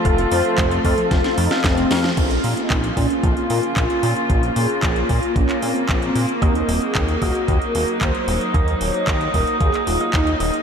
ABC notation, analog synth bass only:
X:1
M:4/4
L:1/8
Q:1/4=113
K:Bbm
V:1 name="Analog synth bass" clef=bass
F,,, F,, F,,, F,, F,,, F,, F,,, F,, | B,,, B,, B,,, B,, B,,, B,, B,,, B,, | B,,, B,, B,,, B,, B,,, B,, B,,, B,, | E,, E,,, E,, E,,, E,, E,,, E,, E,,, |
E,, E,,, E,, E,,, E,, E,,, E,, E,,, |]